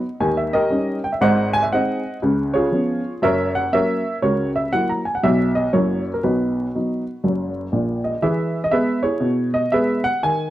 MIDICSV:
0, 0, Header, 1, 2, 480
1, 0, Start_track
1, 0, Key_signature, 5, "major"
1, 0, Tempo, 500835
1, 202, Time_signature, 4, 2, 24, 8
1, 10063, End_track
2, 0, Start_track
2, 0, Title_t, "Upright piano"
2, 0, Program_c, 0, 0
2, 0, Note_on_c, 0, 75, 62
2, 0, Note_on_c, 0, 78, 63
2, 176, Note_off_c, 0, 78, 0
2, 177, Note_off_c, 0, 75, 0
2, 194, Note_on_c, 0, 39, 60
2, 195, Note_on_c, 0, 51, 69
2, 196, Note_on_c, 0, 80, 65
2, 352, Note_off_c, 0, 80, 0
2, 357, Note_on_c, 0, 76, 60
2, 509, Note_off_c, 0, 76, 0
2, 511, Note_on_c, 0, 75, 88
2, 521, Note_on_c, 0, 67, 63
2, 525, Note_on_c, 0, 70, 66
2, 606, Note_off_c, 0, 39, 0
2, 607, Note_off_c, 0, 51, 0
2, 673, Note_on_c, 0, 55, 43
2, 675, Note_on_c, 0, 61, 48
2, 684, Note_on_c, 0, 63, 51
2, 919, Note_off_c, 0, 75, 0
2, 940, Note_off_c, 0, 55, 0
2, 942, Note_off_c, 0, 61, 0
2, 948, Note_off_c, 0, 63, 0
2, 962, Note_off_c, 0, 67, 0
2, 965, Note_off_c, 0, 70, 0
2, 997, Note_on_c, 0, 79, 66
2, 1077, Note_on_c, 0, 76, 55
2, 1081, Note_off_c, 0, 79, 0
2, 1160, Note_on_c, 0, 32, 76
2, 1161, Note_on_c, 0, 44, 80
2, 1164, Note_off_c, 0, 76, 0
2, 1165, Note_on_c, 0, 78, 93
2, 1173, Note_on_c, 0, 72, 73
2, 1179, Note_on_c, 0, 75, 69
2, 1424, Note_off_c, 0, 78, 0
2, 1453, Note_off_c, 0, 72, 0
2, 1456, Note_off_c, 0, 75, 0
2, 1470, Note_on_c, 0, 80, 100
2, 1557, Note_off_c, 0, 80, 0
2, 1559, Note_on_c, 0, 76, 59
2, 1570, Note_off_c, 0, 32, 0
2, 1571, Note_off_c, 0, 44, 0
2, 1645, Note_off_c, 0, 76, 0
2, 1653, Note_on_c, 0, 78, 79
2, 1654, Note_on_c, 0, 56, 39
2, 1657, Note_on_c, 0, 63, 50
2, 1664, Note_on_c, 0, 60, 39
2, 1665, Note_on_c, 0, 72, 58
2, 1673, Note_on_c, 0, 75, 68
2, 1915, Note_off_c, 0, 56, 0
2, 1918, Note_off_c, 0, 63, 0
2, 1923, Note_off_c, 0, 60, 0
2, 2057, Note_off_c, 0, 78, 0
2, 2102, Note_off_c, 0, 72, 0
2, 2106, Note_off_c, 0, 75, 0
2, 2131, Note_on_c, 0, 49, 66
2, 2132, Note_on_c, 0, 37, 61
2, 2430, Note_on_c, 0, 73, 73
2, 2443, Note_on_c, 0, 65, 64
2, 2449, Note_on_c, 0, 68, 68
2, 2536, Note_off_c, 0, 49, 0
2, 2537, Note_off_c, 0, 37, 0
2, 2602, Note_on_c, 0, 53, 39
2, 2608, Note_on_c, 0, 59, 37
2, 2614, Note_on_c, 0, 61, 46
2, 2867, Note_off_c, 0, 53, 0
2, 2871, Note_off_c, 0, 59, 0
2, 2876, Note_off_c, 0, 61, 0
2, 2987, Note_off_c, 0, 73, 0
2, 3053, Note_off_c, 0, 65, 0
2, 3056, Note_off_c, 0, 68, 0
2, 3087, Note_on_c, 0, 42, 74
2, 3090, Note_on_c, 0, 30, 64
2, 3094, Note_on_c, 0, 76, 89
2, 3103, Note_on_c, 0, 70, 77
2, 3108, Note_on_c, 0, 73, 68
2, 3350, Note_off_c, 0, 76, 0
2, 3379, Note_off_c, 0, 70, 0
2, 3381, Note_off_c, 0, 73, 0
2, 3403, Note_on_c, 0, 78, 77
2, 3494, Note_off_c, 0, 42, 0
2, 3496, Note_off_c, 0, 30, 0
2, 3546, Note_off_c, 0, 78, 0
2, 3572, Note_on_c, 0, 58, 41
2, 3574, Note_on_c, 0, 76, 90
2, 3576, Note_on_c, 0, 54, 44
2, 3579, Note_on_c, 0, 61, 40
2, 3588, Note_on_c, 0, 70, 58
2, 3591, Note_on_c, 0, 73, 63
2, 3834, Note_off_c, 0, 58, 0
2, 3837, Note_off_c, 0, 54, 0
2, 3839, Note_off_c, 0, 61, 0
2, 3978, Note_off_c, 0, 76, 0
2, 4024, Note_off_c, 0, 70, 0
2, 4025, Note_off_c, 0, 73, 0
2, 4048, Note_on_c, 0, 49, 53
2, 4049, Note_on_c, 0, 73, 74
2, 4051, Note_on_c, 0, 37, 51
2, 4062, Note_on_c, 0, 66, 51
2, 4062, Note_on_c, 0, 70, 47
2, 4307, Note_off_c, 0, 73, 0
2, 4338, Note_off_c, 0, 66, 0
2, 4338, Note_off_c, 0, 70, 0
2, 4366, Note_on_c, 0, 76, 71
2, 4454, Note_off_c, 0, 49, 0
2, 4456, Note_off_c, 0, 37, 0
2, 4508, Note_off_c, 0, 76, 0
2, 4527, Note_on_c, 0, 54, 41
2, 4529, Note_on_c, 0, 58, 35
2, 4529, Note_on_c, 0, 78, 82
2, 4537, Note_on_c, 0, 64, 40
2, 4679, Note_off_c, 0, 78, 0
2, 4690, Note_on_c, 0, 82, 58
2, 4791, Note_off_c, 0, 54, 0
2, 4792, Note_off_c, 0, 58, 0
2, 4797, Note_off_c, 0, 64, 0
2, 4836, Note_off_c, 0, 82, 0
2, 4842, Note_on_c, 0, 80, 56
2, 4923, Note_off_c, 0, 80, 0
2, 4934, Note_on_c, 0, 78, 57
2, 5013, Note_off_c, 0, 78, 0
2, 5013, Note_on_c, 0, 47, 64
2, 5015, Note_on_c, 0, 35, 68
2, 5017, Note_on_c, 0, 76, 81
2, 5023, Note_on_c, 0, 54, 36
2, 5027, Note_on_c, 0, 59, 39
2, 5034, Note_on_c, 0, 63, 37
2, 5271, Note_off_c, 0, 76, 0
2, 5282, Note_off_c, 0, 54, 0
2, 5285, Note_off_c, 0, 59, 0
2, 5289, Note_off_c, 0, 63, 0
2, 5320, Note_on_c, 0, 75, 74
2, 5417, Note_off_c, 0, 47, 0
2, 5418, Note_off_c, 0, 35, 0
2, 5464, Note_off_c, 0, 75, 0
2, 5492, Note_on_c, 0, 73, 65
2, 5493, Note_on_c, 0, 58, 35
2, 5494, Note_on_c, 0, 30, 51
2, 5494, Note_on_c, 0, 42, 67
2, 5495, Note_on_c, 0, 54, 36
2, 5502, Note_on_c, 0, 66, 45
2, 5503, Note_on_c, 0, 64, 33
2, 5506, Note_on_c, 0, 70, 45
2, 5755, Note_off_c, 0, 58, 0
2, 5756, Note_off_c, 0, 54, 0
2, 5762, Note_off_c, 0, 64, 0
2, 5822, Note_off_c, 0, 73, 0
2, 5859, Note_off_c, 0, 66, 0
2, 5861, Note_off_c, 0, 70, 0
2, 5883, Note_on_c, 0, 70, 52
2, 5898, Note_off_c, 0, 30, 0
2, 5898, Note_off_c, 0, 42, 0
2, 5967, Note_off_c, 0, 70, 0
2, 5974, Note_on_c, 0, 35, 50
2, 5974, Note_on_c, 0, 71, 51
2, 5975, Note_on_c, 0, 47, 53
2, 5982, Note_on_c, 0, 63, 48
2, 5983, Note_on_c, 0, 66, 45
2, 6378, Note_off_c, 0, 35, 0
2, 6378, Note_off_c, 0, 47, 0
2, 6461, Note_off_c, 0, 63, 0
2, 6470, Note_on_c, 0, 54, 33
2, 6474, Note_on_c, 0, 59, 33
2, 6475, Note_on_c, 0, 63, 41
2, 6726, Note_off_c, 0, 54, 0
2, 6729, Note_off_c, 0, 59, 0
2, 6730, Note_off_c, 0, 63, 0
2, 6936, Note_on_c, 0, 42, 52
2, 6937, Note_on_c, 0, 30, 57
2, 7193, Note_off_c, 0, 71, 0
2, 7339, Note_off_c, 0, 30, 0
2, 7339, Note_off_c, 0, 42, 0
2, 7375, Note_off_c, 0, 66, 0
2, 7401, Note_on_c, 0, 34, 49
2, 7406, Note_on_c, 0, 46, 56
2, 7708, Note_on_c, 0, 75, 57
2, 7786, Note_off_c, 0, 34, 0
2, 7788, Note_off_c, 0, 46, 0
2, 7857, Note_off_c, 0, 75, 0
2, 7882, Note_on_c, 0, 52, 60
2, 7882, Note_on_c, 0, 76, 70
2, 7894, Note_on_c, 0, 68, 61
2, 7895, Note_on_c, 0, 71, 53
2, 8216, Note_off_c, 0, 76, 0
2, 8254, Note_off_c, 0, 68, 0
2, 8254, Note_off_c, 0, 71, 0
2, 8279, Note_on_c, 0, 75, 76
2, 8290, Note_off_c, 0, 52, 0
2, 8352, Note_on_c, 0, 76, 84
2, 8357, Note_on_c, 0, 59, 46
2, 8361, Note_on_c, 0, 56, 33
2, 8363, Note_on_c, 0, 68, 53
2, 8365, Note_off_c, 0, 75, 0
2, 8369, Note_on_c, 0, 71, 64
2, 8616, Note_off_c, 0, 76, 0
2, 8622, Note_off_c, 0, 59, 0
2, 8625, Note_off_c, 0, 56, 0
2, 8647, Note_off_c, 0, 68, 0
2, 8650, Note_off_c, 0, 71, 0
2, 8651, Note_on_c, 0, 73, 72
2, 8660, Note_on_c, 0, 64, 49
2, 8663, Note_on_c, 0, 68, 54
2, 8820, Note_on_c, 0, 47, 63
2, 9066, Note_off_c, 0, 73, 0
2, 9110, Note_off_c, 0, 64, 0
2, 9111, Note_off_c, 0, 68, 0
2, 9142, Note_on_c, 0, 75, 77
2, 9237, Note_off_c, 0, 47, 0
2, 9292, Note_off_c, 0, 75, 0
2, 9315, Note_on_c, 0, 76, 80
2, 9319, Note_on_c, 0, 56, 42
2, 9325, Note_on_c, 0, 59, 42
2, 9329, Note_on_c, 0, 68, 53
2, 9330, Note_on_c, 0, 71, 63
2, 9577, Note_off_c, 0, 76, 0
2, 9583, Note_off_c, 0, 56, 0
2, 9588, Note_off_c, 0, 59, 0
2, 9609, Note_off_c, 0, 68, 0
2, 9610, Note_off_c, 0, 71, 0
2, 9622, Note_on_c, 0, 78, 86
2, 9772, Note_off_c, 0, 78, 0
2, 9803, Note_on_c, 0, 51, 62
2, 9807, Note_on_c, 0, 80, 77
2, 10063, Note_off_c, 0, 51, 0
2, 10063, Note_off_c, 0, 80, 0
2, 10063, End_track
0, 0, End_of_file